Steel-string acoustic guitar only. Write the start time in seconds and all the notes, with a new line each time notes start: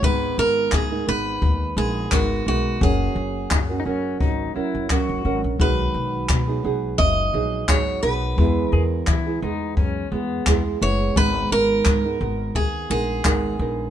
0.04 B4
0.39 A#4
0.74 G#4
1.09 B4
1.78 G#4
2.13 F#4
2.48 F#4
2.83 G#4
5.61 B4
6.98 D#5
7.68 C#5
8.03 B4
8.70 A#4
10.82 C#5
11.17 B4
11.52 A#4
12.56 G#4
12.91 G#4